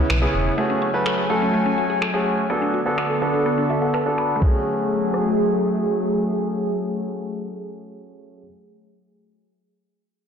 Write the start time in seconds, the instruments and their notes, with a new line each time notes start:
Already playing: analog synth pad C#3 B3 E4
0.10 sub bass B1, synth arpeggio sound B4, finger snap
0.22 grand piano B3 C#4 E4 G#4, synth arpeggio sound G#4
0.34 sub bass E1
0.58 analog synth pad F#3 A3 G#5, grand piano A3 C#4 F#4 G#4, synth arpeggio sound A3
0.70 synth arpeggio sound C#4
0.82 synth arpeggio sound F#4
0.94 grand piano A3 C#4 F#4 B4
1.06 synth arpeggio sound A4, finger snap
1.18 synth arpeggio sound G#4
1.30 grand piano A3 C#4 F#4 A4, synth arpeggio sound F#4
1.42 synth arpeggio sound C#4
1.54 synth arpeggio sound A3
1.66 synth arpeggio sound C#4
1.78 synth arpeggio sound F#4
1.90 synth arpeggio sound G#4
2.02 synth arpeggio sound A4, finger snap
2.14 grand piano A3 C#4 F#4 G#4, synth arpeggio sound G#4
2.50 analog synth pad D3 B3 A4, grand piano B3 D4 F#4 A4, synth arpeggio sound B3
2.62 synth arpeggio sound D4
2.74 synth arpeggio sound F#4
2.86 grand piano B3 D4 F#4 A4
2.98 synth arpeggio sound B4, finger snap
3.10 synth arpeggio sound A4
3.22 grand piano B3 D4 F#4 A4, synth arpeggio sound F#4
3.34 synth arpeggio sound D4
3.46 synth arpeggio sound B3
3.58 synth arpeggio sound D4
3.70 synth arpeggio sound F#4, grand piano E5
3.82 synth arpeggio sound A4, grand piano F#5
3.94 synth arpeggio sound B4, grand piano A5, finger snap
4.06 grand piano B3 D4 F#4 A4, synth arpeggio sound A4
4.18 grand piano B5, finger snap
4.36 synth arpeggio sound A3
4.40 analog synth pad F#3 A3 G#4, grand piano A3, synth arpeggio sound C#4, kick, crash
4.44 synth arpeggio sound F#4 G#4, grand piano G#4
5.14 cross-stick